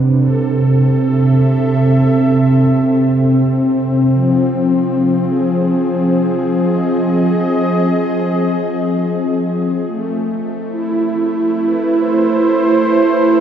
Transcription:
Already playing: C3 C4 D4 B4
0.20 A4
1.06 E5
4.15 F3
5.23 G#4
6.64 D#5
9.88 A3
10.70 E4
11.65 B4
11.98 C5

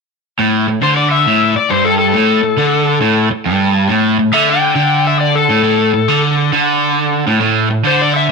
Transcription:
0.39 A2
0.68 A2
0.82 D3 C5
0.97 D5
1.11 E5
1.27 A2
1.56 D5, muted overdriven electric guitar stroke
1.70 G2 C5
1.85 A4
1.99 A4
2.14 A2
2.43 A2
2.58 D3
3.01 A2
3.31 muted overdriven electric guitar stroke
3.46 G2
3.89 A2
4.19 A2
4.32 D3 E5
4.49 G5
4.75 D3
5.07 E5
5.21 D5
5.35 A4
5.50 A2
5.64 A2
5.94 A2
6.08 D3
6.52 D3
7.27 A2
7.41 A2
7.71 A2
7.85 D3 C5
8.02 D5
8.16 E5

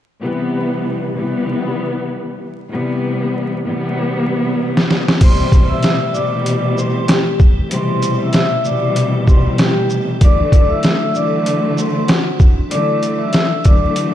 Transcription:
0.21 C3 E3 G3 B3
1.14 C3 E3 G3 B3
2.71 C3 E3 G3 B3
3.64 C3 E3 G3 B3
4.77 snare
4.91 snare
5.08 snare
5.21 B2 C3 E3 G3 A3 G4 C5 C6, kick, closed hi-hat, crash
5.52 kick, closed hi-hat, shaker
5.68 E5 E6
5.82 E5 E6, snare, closed hi-hat
6.13 B2 C3 E3 G3 D5 D6, shaker
6.46 closed hi-hat
6.78 C5 C6, shaker
7.08 G4 G5, snare, closed hi-hat
7.40 kick, shaker
7.71 B2 C3 E3 G3 C5 C6, closed hi-hat
8.02 closed hi-hat, shaker
8.23 E5 E6
8.33 E5 E6, snare, closed hi-hat
8.65 B2 C3 E3 G3 D5 D6, shaker
8.96 closed hi-hat
9.27 C5 C6, kick, shaker
9.58 G4 G5, snare, closed hi-hat
9.90 shaker
10.21 D3 E3 F#3 A3 D4 F#4 D5 D6, kick, closed hi-hat
10.52 kick, closed hi-hat, shaker
10.69 E5 E6
10.83 E5, snare, closed hi-hat
11.15 D3 E3 F#3 A3 D5 D6, shaker
11.46 closed hi-hat
11.78 C5 C6, shaker
12.07 F#4 F#5, snare, closed hi-hat
12.40 kick, shaker
12.71 D3 E3 F#3 A3 D5 D6, closed hi-hat
13.03 closed hi-hat, shaker
13.19 E5 E6
13.32 E5 E6, snare, closed hi-hat
13.64 D3 E3 F#3 A3 D5 D6, kick, closed hi-hat, shaker
13.96 closed hi-hat

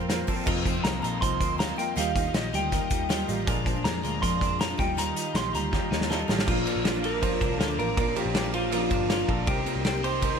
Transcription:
Already playing: F2 A#2 F3 C4 F4 G4 A4 A#4 C5 F5 C6
0.00 A#3 C4 F4
0.08 A#3 C4 F4 A#4, snare, closed hi-hat
0.27 A#2 F3 A#3 C4 F4 A4, kick, open hi-hat
0.45 F1 F2 C3 D#3 A#3 C4 D#4 F4 A#4 D#5 F5 C6, kick, crash
0.65 C4 D#4 F4 C5, kick, closed hi-hat
0.75 D#3 A#3 C4 F4
0.84 C2 A#3 D#4 F4 A#4 A#5, snare, closed hi-hat
1.02 A#1 D#3 A#3 C4 D#4 F4 A4 A#5, closed hi-hat
1.21 C2 D#4 F4 C5 C6, kick, closed hi-hat
1.40 D2 C4 D#4 F4 A#4, kick, closed hi-hat
1.58 D#3 A#3 C4 D#4 F4 A#4 A#5, snare, closed hi-hat
1.68 D#3 A#3 C4 F4
1.76 D#3 A#3 C4 D#4 F4 A#4 G5, closed hi-hat
1.96 D#2 D#3 G3 A#3 D#4 F4 G4 D#5 F5 A#5, closed hi-hat
2.15 D#4 F4 G4, kick, closed hi-hat
2.24 A#3 D#4 F4
2.34 A#1 A#3 D#4 F4 G4 D#5, snare, closed hi-hat
2.52 D2 G3 A#3 D#4 F4 G4 G5, closed hi-hat
2.72 G3 D#4 F4 A#4, kick, closed hi-hat
2.90 D#2 D#4 F4 G4, kick, closed hi-hat
3.09 G3 A#3 D#4 F4 G4, snare, closed hi-hat
3.18 A#3 D#4 F4
3.28 A1 G3 A#3 D#4 F4 G4, closed hi-hat
3.47 A#1 A#2 D3 F3 G#3 D4 F4 G#4 A#4 D5 F5, kick, closed hi-hat
3.65 D4 G#4 C5, kick, closed hi-hat
3.75 F3 G#3 D4 F4
3.84 F2 G#3 D4 G#4 A#4 A#5, snare, closed hi-hat
4.02 D2 F3 G#3 D4 F4 G#4 A#4, closed hi-hat
4.06 F4
4.21 F2 F3 D4 G#4 A#4 C6, kick, closed hi-hat
4.39 F2 D4 G#4 A#4, kick, closed hi-hat
4.59 F3 G#3 D4 F4 G#4 A#4 A#5, snare, closed hi-hat
4.69 F3 G#3 D4 F4
4.77 D#2 D#3 G3 A#3 D#4 F4 G4 D#5 G5, kick, closed hi-hat
4.97 D#3 G3 A#3 D#4 F4 A#5, closed hi-hat
5.15 D#4 F4 G4, closed hi-hat
5.26 A#3 D#4 F4
5.34 A#1 A#3 D#4 F4 G4 C6, snare, closed hi-hat
5.53 D2 G3 A#3 D#4 F4 G4 A#5, closed hi-hat
5.72 G3 D#4 F4 G4, kick, snare
5.90 D#2 D#4 F4 A#4, snare
6.01 snare
6.09 G3 A#3 D#4 F4 A4, snare
6.13 F4
6.19 A#3 D#4 F4
6.28 A1 G3 A#3 D#4 F4 G4, snare
6.39 snare
6.46 A#1 A#2 F3 A#3 D4 F4 A#4 D5 F5 D6, kick, crash
6.65 F3 A#3 D4 F4 A#4, ride
6.76 A#1
6.84 A#3 D4 F4 A4, snare, ride
6.95 A#3 D4 F4
7.03 A#3 D4 F4 A#4, ride
7.21 F3 A#3 D4 F4 C5, kick, ride
7.26 F4
7.40 C2 F3 A#3 D4 F4 A4, kick, ride
7.58 D2 A#3 D4 F4 A4 A#4, snare, ride
7.70 A#3 D4 F4
7.78 A1 A#3 D4 F4 A#4, ride
7.97 A#1 A#2 F3 A#3 D4 F4 A#4, kick, ride
8.15 F3 A#3 D4 F4 G4 C5, ride
8.26 A#1
8.34 A#3 C4 D4 F4 G4, snare, ride
8.44 A#3 D4 F4
8.53 A#3 D4 F4 C5, ride
8.72 F3 A#3 D4 F4 A#4, ride
8.90 G1 F3 A#3 D4 F4 A#4, kick, ride
9.09 A#3 D4 F4 A#4, snare, ride
9.19 A#3 D4 F4
9.28 A#1 A#3 D4 F4 A4, kick, ride
9.46 C2 C3 D#3 A#3 C4 D#4 G4 A#4 G5 C6, kick, ride
9.66 D#3 A#3 C4 D#4 G4 A#4, ride
9.76 C2
9.84 C4 D#4 G4 A#4, snare, ride
9.95 A#3 C4 G4
10.04 C4 D#4 G4 C5, ride
10.22 D#3 A#3 C4 D#4 G4 A#4, kick, ride

